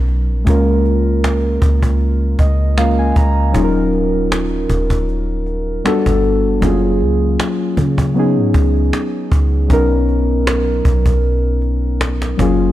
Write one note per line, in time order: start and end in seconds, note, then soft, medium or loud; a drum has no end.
0.00 0.31 B1 medium
0.00 0.42 F#3 medium
0.00 0.42 B3 medium
0.00 0.43 C#4 medium
0.00 0.44 D#4 medium
0.00 0.44 A#4 medium
0.08 cajon slap soft
0.29 0.46 A#1 medium
0.44 1.58 C#2 loud
0.44 2.72 G#3 medium
0.44 2.73 A#3 medium
0.44 2.74 C#4 medium
0.44 2.74 F4 medium
0.44 cajon bass loud
0.49 2.75 A#4 medium
0.85 cajon slap soft
1.24 cajon slap loud
1.62 2.36 C#2 loud
1.62 cajon bass medium
1.82 cajon bass medium
2.01 cajon slap soft
2.39 3.13 C#2 loud
2.39 2.75 D#5 medium
2.39 cajon bass medium
2.77 3.54 G#3 medium
2.77 3.54 A#3 medium
2.77 3.52 C#4 soft
2.77 3.55 F4 soft
2.77 3.55 A#4 medium
2.77 2.97 F5 medium
2.77 cajon slap loud
2.99 3.15 G#5 medium
3.16 3.53 C#2 loud
3.16 3.52 A#5 medium
3.16 cajon bass medium
3.52 4.66 D#1 loud
3.52 5.80 F#3 medium
3.52 5.81 C#4 medium
3.52 5.81 D#4 medium
3.52 5.82 F4 medium
3.52 cajon bass loud
3.57 3.63 G#4 medium
3.64 5.86 A#4 medium
3.93 cajon slap soft
4.32 cajon slap loud
4.70 5.81 D#1 loud
4.70 cajon bass medium
4.90 cajon bass medium
5.08 cajon slap soft
5.46 cajon slap soft
5.84 6.62 G3 medium
5.84 6.62 B3 medium
5.84 6.62 D4 medium
5.84 6.63 F#4 medium
5.84 6.63 A4 medium
5.84 cajon slap loud
6.06 6.47 G1 loud
6.06 cajon bass loud
6.24 cajon slap soft
6.45 6.62 F#1 medium
6.60 7.02 F#1 loud
6.60 8.12 F#3 medium
6.60 8.13 A#3 medium
6.60 8.13 C#4 medium
6.60 8.14 F4 medium
6.60 cajon bass loud
6.65 8.14 G#4 medium
7.01 7.37 C#2 loud
7.01 cajon slap soft
7.40 cajon slap loud
7.77 8.39 C#3 loud
7.77 cajon bass medium
7.98 cajon bass loud
8.14 9.66 F#3 medium
8.14 9.66 B3 medium
8.14 9.67 C#4 medium
8.14 9.68 D#4 medium
8.14 cajon slap soft
8.19 9.68 G#4 medium
8.37 8.54 G#2 medium
8.54 8.91 C#2 loud
8.54 cajon bass medium
8.65 cajon slap soft
8.75 cajon slap soft
8.84 cajon slap soft
8.93 cajon slap medium
9.32 9.68 C#2 loud
9.32 cajon bass medium
9.68 10.81 B1 loud
9.68 12.34 F#3 medium
9.68 12.35 B3 medium
9.68 12.35 C#4 medium
9.68 12.36 D#4 medium
9.68 cajon bass loud
9.73 12.37 A#4 medium
10.09 cajon slap soft
10.47 cajon slap loud
10.85 11.05 B1 loud
10.85 cajon bass medium
11.06 12.35 B1 loud
11.06 cajon bass medium
11.24 cajon slap soft
11.62 cajon slap soft
12.01 cajon slap loud
12.22 cajon slap medium
12.37 12.72 F#1 loud
12.37 12.72 F#3 medium
12.37 12.72 A#3 medium
12.37 12.72 C#4 medium
12.37 12.72 F4 medium
12.37 cajon bass loud
12.42 12.72 G#4 medium